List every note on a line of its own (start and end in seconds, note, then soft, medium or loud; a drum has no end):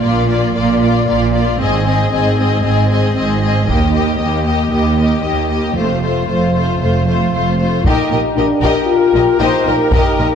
0.03 0.49 A#1 soft
0.03 0.50 A#2 medium
0.03 0.28 A#3 soft
0.03 0.28 F4 soft
0.03 0.28 D5 soft
0.29 0.54 A#3 soft
0.29 0.55 F4 soft
0.29 0.54 D5 soft
0.55 1.02 A#1 soft
0.55 1.02 A#2 soft
0.55 0.81 A#3 soft
0.55 0.81 F4 soft
0.55 0.81 D5 soft
0.82 1.07 A#3 soft
0.82 1.07 F4 soft
0.82 1.07 D5 soft
1.08 1.54 A#1 soft
1.08 1.54 A#2 soft
1.08 1.33 A#3 soft
1.08 1.33 F4 soft
1.08 1.33 D5 soft
1.34 1.60 A#3 soft
1.34 1.60 F4 soft
1.34 1.59 D5 soft
1.60 2.06 G#1 soft
1.60 2.06 G#2 soft
1.60 1.86 C4 soft
1.60 1.86 G#4 soft
1.60 1.85 D#5 soft
1.86 2.11 C4 soft
1.86 2.12 G#4 soft
1.86 2.11 D#5 soft
2.12 2.58 G#1 soft
2.12 2.58 G#2 soft
2.12 2.37 C4 soft
2.12 2.39 G#4 soft
2.12 2.38 D#5 soft
2.38 2.63 C4 soft
2.38 2.64 G#4 soft
2.38 2.63 D#5 soft
2.64 3.10 G#1 soft
2.64 3.10 G#2 soft
2.64 2.88 C4 soft
2.64 2.90 G#4 soft
2.64 2.90 D#5 soft
2.89 3.14 C4 soft
2.89 3.15 G#4 soft
2.89 3.15 D#5 soft
3.16 3.62 G#1 soft
3.16 3.62 G#2 soft
3.16 3.40 C4 soft
3.16 3.41 G#4 soft
3.16 3.41 D#5 soft
3.41 3.67 C4 soft
3.41 3.68 G#4 soft
3.41 3.66 D#5 soft
3.67 4.14 D#2 soft
3.67 3.93 A#3 soft
3.67 3.94 G4 soft
3.67 3.92 D#5 soft
3.67 taiko soft
3.93 4.20 A#3 soft
3.93 4.20 G4 soft
3.93 4.17 D#5 soft
4.18 4.66 D#2 soft
4.18 4.45 A#3 soft
4.18 4.46 G4 soft
4.18 4.43 D#5 soft
4.44 4.72 A#3 soft
4.44 4.72 G4 soft
4.44 4.71 D#5 soft
4.72 5.18 D#2 soft
4.72 4.98 A#3 soft
4.72 4.98 G4 soft
4.72 4.97 D#5 soft
4.98 5.24 A#3 soft
4.98 5.24 G4 soft
4.98 5.21 D#5 soft
5.23 5.70 D#2 soft
5.23 5.71 D#2 soft
5.23 5.49 A#3 soft
5.23 5.51 G4 soft
5.23 5.48 D#5 soft
5.49 5.76 A#3 soft
5.49 5.77 G4 soft
5.49 5.75 D#5 soft
5.76 6.22 F1 soft
5.76 6.22 F2 soft
5.76 6.02 A3 soft
5.76 6.02 F4 soft
5.76 6.02 C5 soft
6.03 6.28 A3 soft
6.03 6.29 F4 soft
6.03 6.27 C5 soft
6.29 6.75 F1 soft
6.29 6.75 F2 soft
6.29 6.54 A3 soft
6.29 6.55 F4 soft
6.29 6.54 C5 soft
6.55 6.80 A3 soft
6.55 6.81 F4 soft
6.55 6.80 C5 soft
6.80 7.27 F1 soft
6.80 7.26 F2 soft
6.80 7.06 A3 soft
6.80 7.07 F4 soft
6.80 7.06 C5 soft
7.07 7.32 A3 soft
7.07 7.32 F4 soft
7.07 7.32 C5 soft
7.33 7.79 F1 soft
7.33 7.79 F2 soft
7.33 7.58 A3 soft
7.33 7.59 F4 soft
7.33 7.58 C5 soft
7.59 7.84 A3 soft
7.59 7.85 F4 soft
7.59 7.85 C5 soft
7.84 7.93 A#1 soft
7.84 7.92 A#2 soft
7.84 10.35 A#3 soft
7.84 8.33 D#4 medium
7.84 10.35 G4 soft
7.84 8.10 G4 soft
7.84 10.35 A#4 soft
7.84 8.10 A#4 soft
7.84 8.09 D#5 soft
7.84 10.35 G5 soft
7.84 taiko soft
8.11 8.19 A#1 soft
8.11 8.19 A#2 soft
8.11 8.21 G4 soft
8.11 8.20 A#4 soft
8.11 8.20 D#5 soft
8.36 8.45 A#1 soft
8.36 8.45 A#2 soft
8.36 8.75 D4 medium
8.36 8.46 G4 soft
8.36 8.46 A#4 soft
8.36 8.46 D#5 soft
8.62 8.71 A#1 soft
8.62 8.70 A#2 soft
8.62 8.87 G4 soft
8.62 8.87 A#4 soft
8.62 8.88 D#5 medium
8.62 taiko soft
8.74 8.88 D#4 medium
8.86 9.38 F4 medium
8.86 9.37 A#4 soft
9.14 9.22 A#1 soft
9.14 9.22 A#2 soft
9.14 9.24 G4 soft
9.14 9.24 A#4 soft
9.14 9.23 D#5 soft
9.40 9.48 A#1 soft
9.40 9.49 A#2 soft
9.40 9.90 D#4 medium
9.40 9.65 G4 soft
9.40 9.65 A#4 soft
9.40 9.66 C5 soft
9.40 9.64 D#5 medium
9.66 9.74 A#1 soft
9.66 9.75 A#2 soft
9.66 9.75 G4 soft
9.66 10.35 A#4 soft
9.66 9.75 A#4 soft
9.66 9.75 D#5 soft
9.91 10.00 A#1 soft
9.91 10.01 A#2 soft
9.91 10.35 D#4 medium
9.91 10.17 G4 soft
9.91 10.17 A#4 soft
9.91 10.17 D#5 soft
9.91 taiko medium
10.18 10.26 A#1 soft
10.18 10.27 A#2 soft
10.18 10.27 G4 soft
10.18 10.27 A#4 soft
10.18 10.28 D#5 soft